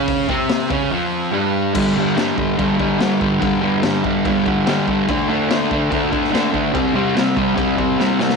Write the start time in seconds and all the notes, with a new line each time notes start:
Already playing: C#3 C#4
0.08 kick, open hi-hat
0.29 C3 C4, kick
0.49 snare, open hi-hat
0.70 C#3 C#4, kick
0.91 F2 F3
1.32 G2 G3
1.75 G2 D3 G3, kick, crash
1.96 G2 D3 G3
2.16 G2 D3 G3, snare, crash
2.37 G2 D3 G3, kick
2.57 G2 D3 G3, kick, crash
2.77 G2 D3 G3, kick
2.98 G2 D3 G3, snare, crash
3.20 G2 D3 G3, kick
3.40 G2 D3 G3, kick, crash
3.61 G2 D3 G3
3.83 G2 D3 G3, snare, crash
4.03 G2 D3 G3, kick
4.25 G2 D3 G3, kick, crash
4.45 G2 D3 G3, kick
4.66 G2 D3 G3, snare, crash
4.88 G2 D3 G3, kick
5.08 D3 A3 D4, kick, crash
5.28 D3 A3 D4
5.50 D3 A3 D4, snare, crash
5.71 D3 A3 D4, kick
5.91 D3 A3 D4, kick, crash
6.11 D3 A3 D4, kick
6.24 snare
6.31 D3 A3 D4, snare, crash
6.51 D3 A3 D4, kick
6.73 C3 G3 C4, kick, crash
6.94 C3 G3 C4
7.15 C3 G3 C4, snare, crash
7.36 C3 G3 C4, kick
7.55 C3 G3 C4, kick, crash
7.77 C3 G3 C4, kick
7.99 C3 G3 C4, snare
8.19 C3 G3 C4, snare
8.30 snare